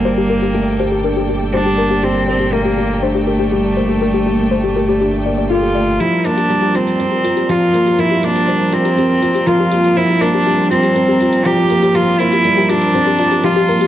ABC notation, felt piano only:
X:1
M:4/4
L:1/8
Q:1/4=121
K:Cdor
V:1 name="Felt piano"
G, B, A, G D G G, B, | G, B, A, G D G G, B, | G, B, A, G D B, A A, | F, B, G, F C F F, B, |
F, B, G, F C F F, B, | F, B, G, F C F F, B, | F, B, G, F C F F, B, |]